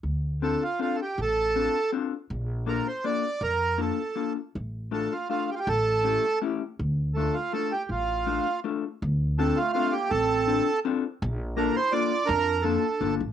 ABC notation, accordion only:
X:1
M:3/4
L:1/16
Q:1/4=162
K:Dm
V:1 name="Accordion"
z4 A2 F2 F3/2 A/2 G2 | A8 z4 | z4 B2 c2 d4 | B4 A6 z2 |
z4 A2 F2 F2 G/2 F/2 G | A8 z4 | z4 A2 F2 A2 G2 | F8 z4 |
z4 A2 F2 F2 G2 | A8 z4 | z4 B2 c2 d4 | B4 A6 z2 |]